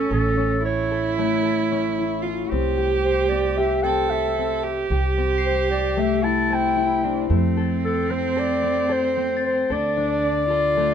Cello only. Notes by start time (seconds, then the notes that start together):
Already playing: C#4
0.63 E4
2.23 F4
2.49 G4
3.83 A4
4.64 G4
6.24 E4
7.04 D4
7.30 C4
9.71 D4
10.49 F4